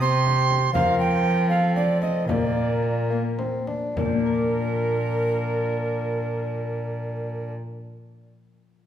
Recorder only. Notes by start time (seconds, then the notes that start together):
0.01 C6
0.74 F5
1.00 G5
1.49 F5
1.76 D5
2.02 D#5
2.28 D5 D#5
3.97 A#4